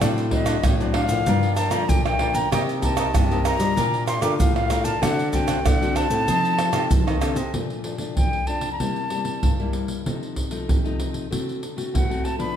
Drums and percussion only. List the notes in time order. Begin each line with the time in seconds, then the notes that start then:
0.01 pandeiro, tamborim, shaker, surdo
0.18 pandeiro, shaker
0.31 pandeiro, surdo
0.46 pandeiro, tamborim, shaker
0.64 pandeiro, tamborim, shaker, surdo
0.81 pandeiro, shaker
0.94 pandeiro, tamborim
1.09 pandeiro, shaker
1.26 pandeiro, shaker, surdo
1.43 pandeiro, shaker
1.57 pandeiro, tamborim, shaker
1.71 pandeiro, tamborim, shaker
1.89 pandeiro, shaker, surdo
2.06 pandeiro, tamborim, shaker
2.19 pandeiro, tamborim
2.35 pandeiro, shaker
2.52 pandeiro, tamborim, shaker, surdo
2.69 pandeiro, shaker
2.82 pandeiro, shaker, surdo
2.97 pandeiro, tamborim, shaker
3.15 pandeiro, tamborim, shaker, surdo
3.31 pandeiro, shaker
3.45 pandeiro, tamborim, shaker
3.60 pandeiro, shaker
3.77 pandeiro, shaker, surdo
3.94 pandeiro, shaker
4.08 pandeiro, tamborim, shaker
4.22 pandeiro, tamborim, shaker
4.40 pandeiro, shaker, surdo
4.56 pandeiro, tamborim, shaker
4.70 pandeiro, tamborim, shaker
4.85 pandeiro, shaker
5.03 pandeiro, tamborim, shaker, surdo
5.19 pandeiro, shaker
5.33 pandeiro, shaker, surdo
5.48 pandeiro, tamborim, shaker
5.66 pandeiro, tamborim, shaker, surdo
5.82 pandeiro, shaker
5.96 pandeiro, tamborim, shaker
6.10 pandeiro, shaker
6.28 pandeiro, shaker, surdo
6.45 pandeiro, shaker
6.59 pandeiro, tamborim, shaker
6.73 pandeiro, tamborim, shaker
6.91 pandeiro, shaker, surdo
7.08 pandeiro, tamborim, shaker
7.21 pandeiro, tamborim, shaker
7.36 pandeiro, shaker
7.54 pandeiro, surdo
7.70 pandeiro
7.84 pandeiro
7.98 pandeiro
8.17 pandeiro, surdo
8.33 pandeiro
8.47 pandeiro
8.61 pandeiro
8.80 pandeiro, surdo
8.96 pandeiro
9.10 pandeiro
9.25 pandeiro
9.43 pandeiro, surdo
9.60 pandeiro
9.73 pandeiro
9.88 pandeiro
10.06 pandeiro, surdo
10.23 pandeiro
10.36 pandeiro, surdo
10.51 pandeiro
10.69 pandeiro, surdo
10.86 pandeiro
11.00 pandeiro
11.14 pandeiro
11.32 pandeiro, surdo
11.49 pandeiro
11.63 pandeiro
11.78 pandeiro
11.95 pandeiro, surdo
12.11 pandeiro
12.25 pandeiro
12.40 pandeiro